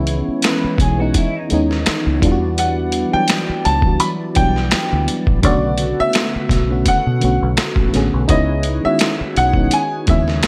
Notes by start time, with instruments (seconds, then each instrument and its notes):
Already playing: fingered electric bass C#2, fm electric piano E3 G#3 B3 C#4 D#4 E4, tonewheel organ B3 C#4 C#5
0.07 closed hi-hat
0.28 muted fingered electric bass stroke
0.42 clean electric guitar B4, finger snap, snare, closed hi-hat
0.64 muted fingered electric bass stroke
0.78 fingered electric bass B1, clean electric guitar G#4, kick, closed hi-hat
0.97 fm electric piano E3 G#3 B3 C#4, clean electric guitar F#4
1.02 fm electric piano D#4
1.14 clean electric guitar E4, kick, closed hi-hat
1.36 clean electric guitar D#4
1.49 fingered electric bass D#2, fm electric piano D#3 G#3 B3 C#4, closed hi-hat
1.54 fm electric piano D#4
1.71 snare
1.86 finger snap, muted fingered electric bass stroke, snare, closed hi-hat
2.07 fingered electric bass C#2
2.21 fingered electric bass E2, fm electric piano E3 G3 B3 D4, tonewheel organ E3 E4 D5, kick, closed hi-hat
2.25 fm electric piano F4
2.32 fm electric piano F#4
2.58 grand piano F#5, closed hi-hat
2.92 closed hi-hat
3.11 fm electric piano E3 G3 B3 D4, grand piano G5, muted fingered electric bass stroke
3.16 fm electric piano F#3
3.28 finger snap, snare, closed hi-hat
3.49 muted fingered electric bass stroke
3.65 fingered electric bass C#2, grand piano A5, closed hi-hat
3.82 fm electric piano E3 G3 B3 D4, kick
3.87 fm electric piano F#4
4.00 grand piano B5, closed hi-hat
4.35 fingered electric bass B1, fm electric piano E3 F#3 B3 D4, grand piano G5, kick, closed hi-hat
4.39 fm electric piano F#3 G3
4.56 snare
4.71 finger snap, snare, closed hi-hat
4.93 fingered electric bass D2
5.08 closed hi-hat
5.27 fingered electric bass A1, kick
5.43 fingered electric bass B1, fm electric piano C#3 D3 A3 B3, tonewheel organ B3 F#4 A4 B4, grand piano D5, kick, closed hi-hat
5.47 fm electric piano F#4
5.78 closed hi-hat
6.00 grand piano E5, muted fingered electric bass stroke
6.13 finger snap, snare, closed hi-hat
6.36 muted fingered electric bass stroke
6.49 fingered electric bass B1, kick, snare, closed hi-hat
6.68 fm electric piano D3 A3 B3 C#4
6.72 fm electric piano F#4
6.86 grand piano F#5, kick, closed hi-hat
7.07 fingered electric bass B2
7.21 fingered electric bass B1, fm electric piano D3 A3 B3 C#4, closed hi-hat
7.25 fm electric piano F#4
7.43 fingered electric bass B1
7.57 finger snap, snare, closed hi-hat
7.76 fingered electric bass A1, kick
7.93 fingered electric bass A1, fm electric piano D3 A3 B3 C#4, snare, closed hi-hat
7.97 fm electric piano G#4
8.14 fingered electric bass B1
8.28 fingered electric bass C#2, fm electric piano G#3 B3 C#4 D#4, tonewheel organ C#4 G#4 B4 C#5, grand piano D#5, kick, closed hi-hat
8.32 fm electric piano E4
8.63 closed hi-hat
8.82 fm electric piano D#3 G#3 B3 C#4, grand piano E5, muted fingered electric bass stroke
8.87 fm electric piano F#4
8.99 finger snap, snare, closed hi-hat
9.21 muted fingered electric bass stroke
9.36 fingered electric bass B1, grand piano F#5, closed hi-hat
9.54 fm electric piano D#3 G#3 B3 C#4, kick
9.58 fm electric piano D#4
9.71 grand piano G#5, closed hi-hat
10.06 fingered electric bass D#2, fm electric piano C#3 G#3 B3 C#4, grand piano E5, kick, closed hi-hat
10.11 fm electric piano E4
10.28 snare
10.43 finger snap, snare, closed hi-hat